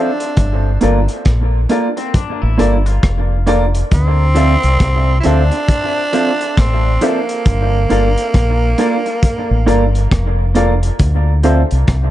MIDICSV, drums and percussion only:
0, 0, Header, 1, 2, 480
1, 0, Start_track
1, 0, Tempo, 884956
1, 203, Time_signature, 4, 2, 24, 8
1, 6566, End_track
2, 0, Start_track
2, 0, Title_t, "Drums"
2, 109, Note_on_c, 9, 42, 54
2, 163, Note_off_c, 9, 42, 0
2, 199, Note_on_c, 9, 42, 76
2, 202, Note_on_c, 9, 36, 95
2, 253, Note_off_c, 9, 42, 0
2, 256, Note_off_c, 9, 36, 0
2, 439, Note_on_c, 9, 42, 64
2, 493, Note_off_c, 9, 42, 0
2, 588, Note_on_c, 9, 42, 51
2, 642, Note_off_c, 9, 42, 0
2, 678, Note_on_c, 9, 42, 72
2, 682, Note_on_c, 9, 36, 105
2, 682, Note_on_c, 9, 37, 93
2, 733, Note_off_c, 9, 42, 0
2, 736, Note_off_c, 9, 36, 0
2, 737, Note_off_c, 9, 37, 0
2, 919, Note_on_c, 9, 42, 71
2, 973, Note_off_c, 9, 42, 0
2, 1069, Note_on_c, 9, 42, 50
2, 1123, Note_off_c, 9, 42, 0
2, 1161, Note_on_c, 9, 42, 83
2, 1162, Note_on_c, 9, 36, 97
2, 1215, Note_off_c, 9, 42, 0
2, 1217, Note_off_c, 9, 36, 0
2, 1406, Note_on_c, 9, 42, 81
2, 1460, Note_off_c, 9, 42, 0
2, 1552, Note_on_c, 9, 42, 49
2, 1606, Note_off_c, 9, 42, 0
2, 1643, Note_on_c, 9, 42, 69
2, 1644, Note_on_c, 9, 36, 105
2, 1647, Note_on_c, 9, 37, 110
2, 1697, Note_off_c, 9, 42, 0
2, 1698, Note_off_c, 9, 36, 0
2, 1701, Note_off_c, 9, 37, 0
2, 1882, Note_on_c, 9, 42, 68
2, 1936, Note_off_c, 9, 42, 0
2, 2032, Note_on_c, 9, 42, 58
2, 2086, Note_off_c, 9, 42, 0
2, 2123, Note_on_c, 9, 42, 80
2, 2124, Note_on_c, 9, 36, 89
2, 2177, Note_off_c, 9, 42, 0
2, 2179, Note_off_c, 9, 36, 0
2, 2362, Note_on_c, 9, 42, 62
2, 2416, Note_off_c, 9, 42, 0
2, 2512, Note_on_c, 9, 42, 52
2, 2566, Note_off_c, 9, 42, 0
2, 2603, Note_on_c, 9, 42, 76
2, 2604, Note_on_c, 9, 36, 100
2, 2607, Note_on_c, 9, 37, 97
2, 2657, Note_off_c, 9, 42, 0
2, 2658, Note_off_c, 9, 36, 0
2, 2661, Note_off_c, 9, 37, 0
2, 2839, Note_on_c, 9, 42, 74
2, 2893, Note_off_c, 9, 42, 0
2, 2990, Note_on_c, 9, 42, 50
2, 3045, Note_off_c, 9, 42, 0
2, 3083, Note_on_c, 9, 36, 99
2, 3083, Note_on_c, 9, 42, 82
2, 3138, Note_off_c, 9, 36, 0
2, 3138, Note_off_c, 9, 42, 0
2, 3325, Note_on_c, 9, 42, 77
2, 3379, Note_off_c, 9, 42, 0
2, 3475, Note_on_c, 9, 42, 46
2, 3530, Note_off_c, 9, 42, 0
2, 3565, Note_on_c, 9, 42, 75
2, 3566, Note_on_c, 9, 36, 98
2, 3569, Note_on_c, 9, 37, 112
2, 3620, Note_off_c, 9, 36, 0
2, 3620, Note_off_c, 9, 42, 0
2, 3623, Note_off_c, 9, 37, 0
2, 3804, Note_on_c, 9, 42, 65
2, 3858, Note_off_c, 9, 42, 0
2, 3954, Note_on_c, 9, 42, 56
2, 4008, Note_off_c, 9, 42, 0
2, 4044, Note_on_c, 9, 42, 82
2, 4046, Note_on_c, 9, 36, 102
2, 4098, Note_off_c, 9, 42, 0
2, 4100, Note_off_c, 9, 36, 0
2, 4286, Note_on_c, 9, 42, 65
2, 4340, Note_off_c, 9, 42, 0
2, 4434, Note_on_c, 9, 42, 52
2, 4488, Note_off_c, 9, 42, 0
2, 4524, Note_on_c, 9, 42, 80
2, 4525, Note_on_c, 9, 36, 102
2, 4528, Note_on_c, 9, 37, 91
2, 4578, Note_off_c, 9, 42, 0
2, 4580, Note_off_c, 9, 36, 0
2, 4582, Note_off_c, 9, 37, 0
2, 4762, Note_on_c, 9, 42, 73
2, 4816, Note_off_c, 9, 42, 0
2, 4913, Note_on_c, 9, 42, 45
2, 4967, Note_off_c, 9, 42, 0
2, 5005, Note_on_c, 9, 36, 98
2, 5005, Note_on_c, 9, 42, 84
2, 5059, Note_off_c, 9, 36, 0
2, 5059, Note_off_c, 9, 42, 0
2, 5249, Note_on_c, 9, 42, 79
2, 5303, Note_off_c, 9, 42, 0
2, 5397, Note_on_c, 9, 42, 48
2, 5451, Note_off_c, 9, 42, 0
2, 5486, Note_on_c, 9, 36, 108
2, 5486, Note_on_c, 9, 42, 75
2, 5490, Note_on_c, 9, 37, 107
2, 5540, Note_off_c, 9, 36, 0
2, 5541, Note_off_c, 9, 42, 0
2, 5544, Note_off_c, 9, 37, 0
2, 5723, Note_on_c, 9, 42, 69
2, 5778, Note_off_c, 9, 42, 0
2, 5873, Note_on_c, 9, 42, 57
2, 5927, Note_off_c, 9, 42, 0
2, 5962, Note_on_c, 9, 42, 81
2, 5964, Note_on_c, 9, 36, 98
2, 6016, Note_off_c, 9, 42, 0
2, 6018, Note_off_c, 9, 36, 0
2, 6202, Note_on_c, 9, 42, 64
2, 6256, Note_off_c, 9, 42, 0
2, 6350, Note_on_c, 9, 42, 51
2, 6404, Note_off_c, 9, 42, 0
2, 6441, Note_on_c, 9, 42, 72
2, 6443, Note_on_c, 9, 36, 96
2, 6445, Note_on_c, 9, 37, 90
2, 6495, Note_off_c, 9, 42, 0
2, 6498, Note_off_c, 9, 36, 0
2, 6499, Note_off_c, 9, 37, 0
2, 6566, End_track
0, 0, End_of_file